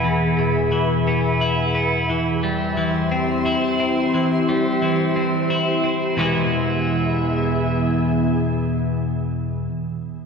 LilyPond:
<<
  \new Staff \with { instrumentName = "Ambient pad" } { \time 6/8 \key e \major \tempo 4. = 59 << { <gis' b' b''>2. | <e g' c'' c'''>2.~ | <e g' c'' c'''>2. | <e b gis' e''>2.~ |
<e b gis' e''>2. | } \\ { e''2.~ | e''2.~ | e''2. | r2. |
r2. | } >> }
  \new Staff \with { instrumentName = "Clean electric guitar" } { \clef bass \time 6/8 \key e \major <e, e b e'>8 b,8 e8 b8 e'8 b8 | e8 g8 e8 c'8 e'8 c'8 | e8 g8 e8 c'8 e'8 c'8 | <e, b, e gis b e'>2.~ |
<e, b, e gis b e'>2. | }
>>